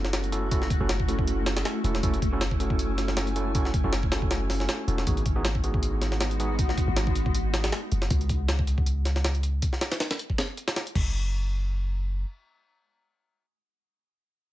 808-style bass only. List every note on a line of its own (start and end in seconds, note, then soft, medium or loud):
0.00 0.79 F#1 loud
0.80 1.64 F#1 medium
1.84 2.01 E1 medium
2.03 3.83 F#1 loud
3.84 4.67 F#1 medium
4.88 5.05 E1 medium
5.07 6.86 G#1 loud
6.88 7.71 G#1 medium
7.92 8.09 F#1 medium
8.11 9.61 C#2 loud
10.95 12.24 F#1 loud